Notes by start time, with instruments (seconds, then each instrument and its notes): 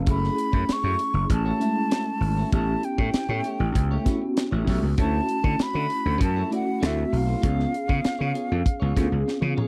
0.06 slap bass F#1, clean electric guitar A3 E4 F#4 C#5, tine electric piano A3 C#4 E4 G#4, flute B5, kick, closed hi-hat
0.24 snare
0.37 muted clean electric guitar stroke, closed hi-hat
0.52 slap bass F#2, clean electric guitar A3 E4 F#4 C#5, kick
0.68 muted clean electric guitar stroke, muted slap bass stroke, snare, closed hi-hat
0.73 flute C#6
0.84 slap bass F#2, clean electric guitar A3 E4 F#4 C#5
0.99 muted clean electric guitar stroke, closed hi-hat
1.14 slap bass F#1, muted clean electric guitar stroke
1.29 slap bass A1, flute A5, muted clean electric guitar stroke, kick, closed hi-hat
1.45 clean electric guitar A3 E4 F#4 C#5
1.59 tine electric piano G#3 A3 C#4 E4, clean electric guitar A3 E4 F#4 E5, closed hi-hat
1.76 muted clean electric guitar stroke
1.90 clean electric guitar A3 E4 F#4 C#5, snare, closed hi-hat
2.06 muted clean electric guitar stroke
2.21 slap bass G#1, muted clean electric guitar stroke, open hi-hat
2.37 clean electric guitar A3 E4 F#4 C#5
2.52 slap bass A1, clean electric guitar A3 E4 G4 C#5, tine electric piano B3 C#4 E4 G4, flute A5, kick, closed hi-hat
2.83 flute G5, muted clean electric guitar stroke, closed hi-hat
2.98 slap bass A2, clean electric guitar A3 E4 G4 C#5, kick
3.13 muted clean electric guitar stroke, muted slap bass stroke, snare, closed hi-hat
3.29 slap bass A2, clean electric guitar A3 E4 G4 C#5
3.44 clean electric guitar A3 E4 G4 C#5, closed hi-hat
3.60 slap bass A1, muted clean electric guitar stroke
3.75 slap bass C#2, muted clean electric guitar stroke, kick, closed hi-hat
3.91 clean electric guitar A3 E4 G4 C#5
4.04 clean electric guitar A3 E4 G4 C#5, tine electric piano B3 C#4 E4 F#4, kick, snare, closed hi-hat
4.22 muted clean electric guitar stroke
4.37 muted clean electric guitar stroke, snare, closed hi-hat
4.51 slap bass A1, clean electric guitar A3 E4 G4 C#5
4.67 slap bass B1, clean electric guitar A3 E4 G4 C#5, kick, open hi-hat
4.82 slap bass C#2, muted clean electric guitar stroke
4.98 slap bass D2, clean electric guitar A3 E4 F#4 C#5, tine electric piano A3 C#4 E4 F#4, flute A5, kick, closed hi-hat
5.29 muted clean electric guitar stroke, closed hi-hat
5.43 slap bass D3, clean electric guitar A3 E4 F#4 C#5, kick
5.59 flute B5, muted slap bass stroke, snare, closed hi-hat
5.74 slap bass D3, clean electric guitar A3 E4 F#4 C#5
5.90 muted clean electric guitar stroke, closed hi-hat
6.05 slap bass D2, muted clean electric guitar stroke
6.20 slap bass F#2, flute A5, muted clean electric guitar stroke, kick, closed hi-hat
6.36 clean electric guitar A3 E4 F#4 C#5
6.51 tine electric piano A3 C#4 E4 F#4, clean electric guitar A3 E4 F#4 D5, closed hi-hat
6.55 flute F#5
6.66 muted clean electric guitar stroke
6.80 slap bass D2, clean electric guitar A3 E4 F#4 C5, tine electric piano A3 C4 E4 F#4, snare, closed hi-hat
6.86 flute E5
6.96 muted clean electric guitar stroke
7.12 slap bass B1, muted clean electric guitar stroke, open hi-hat
7.17 flute F5
7.27 clean electric guitar A3 E4 F#4 C5
7.42 slap bass C#2, clean electric guitar B3 F4 G#4 C#5, tine electric piano B3 C#4 F4 G#4, kick, closed hi-hat
7.60 snare
7.72 muted clean electric guitar stroke, closed hi-hat
7.88 slap bass C#3, clean electric guitar B3 F4 G#4 C#5, kick
8.04 muted clean electric guitar stroke, muted slap bass stroke, snare, closed hi-hat
8.19 slap bass C#3, clean electric guitar B3 F4 G#4 C#5
8.34 clean electric guitar B3 F4 G#4 C#5, closed hi-hat
8.50 slap bass F2, muted clean electric guitar stroke
8.65 muted clean electric guitar stroke, kick, closed hi-hat
8.80 slap bass C#2, clean electric guitar B3 F4 G#4 C#5
8.95 slap bass D2, clean electric guitar B3 F4 G#4 C#5, tine electric piano B3 C#4 F4 G#4, kick, snare, closed hi-hat
9.10 slap bass C#2, muted clean electric guitar stroke
9.26 muted clean electric guitar stroke, snare
9.41 slap bass C#3, clean electric guitar B3 F4 G#4 C#5, high tom
9.56 clean electric guitar B3 F4 G#4 C#5, mid tom